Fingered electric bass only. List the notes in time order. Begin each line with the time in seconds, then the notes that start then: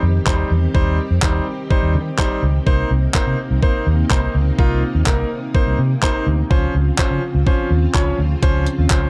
0.03 F2
0.27 D#2
0.51 E2
0.75 D#2
1.11 F2
1.83 D#2
1.95 D#3
2.43 C#2
2.67 C2
2.91 C2
3.15 muted fingered electric bass stroke
3.27 C3
3.51 C2
3.87 D#2
4.11 C2
4.35 C#2
4.59 C2
4.95 D#2
5.67 C2
5.79 C3
6.27 D2
6.51 C#2
6.75 C#2
7.11 C#3
7.35 C#2
7.71 D#2
7.95 C#2
8.19 D2
8.43 C#2
8.79 D#2
8.91 C#2